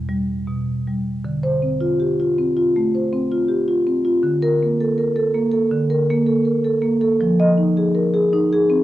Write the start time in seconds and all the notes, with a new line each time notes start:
Already playing: E2
0.09 G3
0.48 B2
0.87 G3
1.25 D3
1.43 C5
1.62 C4
1.81 F4
2.00 G4
2.20 F4
2.39 C4
2.57 F4
2.76 A3
2.95 C5
3.13 C4
3.32 F4
3.48 G4
3.68 F4
3.87 C4
4.05 F4
4.23 D3
4.42 A#4
4.63 A#3
4.81 A4
4.98 A#4
5.16 A4
5.34 A#3
5.52 A4
5.71 D3
5.90 A#4
6.10 A#3
6.27 A4
6.45 A#4
6.64 A4
6.82 A#3
7.01 A4
7.21 F3
7.40 D#5
7.58 D#4
7.77 G#4
7.95 A#4
8.14 G#4
8.33 D#4
8.53 G#4
8.70 C4